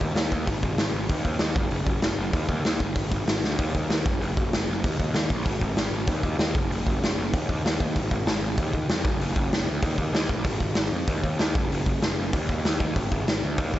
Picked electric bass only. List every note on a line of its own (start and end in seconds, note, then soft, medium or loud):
0.01 0.14 D#2 medium
0.14 0.29 D#2 medium
0.32 0.46 D#2 medium
0.48 0.62 G#1 medium
0.62 0.76 G#1 medium
0.77 0.92 G#1 medium
0.92 1.07 G#1 medium
1.09 1.24 D#2 loud
1.25 1.39 D#2 medium
1.40 1.54 D#2 medium
1.55 1.70 F#1 medium
1.71 1.85 F#1 medium
1.86 2.01 F#1 medium
2.03 2.17 F#1 medium
2.18 2.32 F#1 medium
2.33 2.48 D#2 medium
2.48 2.63 D#2 medium
2.65 2.79 D#2 medium
2.80 2.96 G1 medium
2.96 3.10 G#1 medium
3.12 3.26 G#1 medium
3.26 3.41 G#1 medium
3.43 3.57 D2 medium
3.59 3.73 D#2 medium
3.75 3.88 D#2 medium
3.89 4.04 D#2 medium
4.05 4.19 F#1 medium
4.21 4.35 F#1 loud
4.37 4.51 F#1 loud
4.52 4.66 F#1 medium
4.68 4.85 F#1 medium
4.84 4.97 D#2 loud
4.99 5.13 D#2 medium
5.15 5.29 D#2 medium
5.30 5.44 A#1 medium
5.46 5.60 G#1 medium
5.61 5.75 G#1 medium
5.77 5.91 G#1 medium
5.91 6.06 G#1 loud
6.08 6.22 D#2 loud
6.23 6.37 D#2 medium
6.39 6.53 D#2 medium
6.55 6.69 F#1 medium
6.70 6.84 F#1 loud
6.87 7.01 F#1 medium
7.01 7.16 F#1 medium
7.18 7.35 F#1 medium
7.33 7.47 D#2 loud
7.49 7.63 D#2 medium
7.64 7.78 D#2 medium
7.80 7.98 D#2 medium
7.96 8.10 G#1 loud
8.11 8.25 G#1 medium
8.26 8.41 G#1 medium
8.41 8.56 G#1 medium
8.58 8.72 D#2 medium
8.74 8.88 D#2 medium
8.89 9.03 F2 medium
9.05 9.19 F#1 medium
9.19 9.34 F#1 medium
9.36 9.50 F#1 medium
9.52 9.66 F#1 medium
9.66 9.81 D2 medium
9.83 9.97 D#2 loud
9.98 10.12 D#2 loud
10.13 10.28 D#2 loud
10.30 10.47 A#1 medium
10.45 10.59 G#1 loud
10.60 10.75 G#1 loud
10.77 10.91 G#1 medium
10.92 11.07 F2 medium
11.08 11.22 D#2 medium
11.23 11.38 D#2 medium
11.39 11.54 D#2 medium
11.55 11.69 F#1 medium
11.72 11.86 F#1 medium
11.86 12.01 F#1 medium
12.02 12.16 F#1 medium
12.18 12.32 F#1 medium
12.34 12.48 D#2 medium
12.49 12.63 D#2 medium
12.66 12.79 D#2 loud
12.80 12.94 D#2 medium
12.96 13.10 G#1 medium
13.11 13.26 G#1 medium
13.27 13.41 G#1 medium
13.42 13.58 D2 medium
13.58 13.72 D#2 medium
13.74 13.79 D#2 medium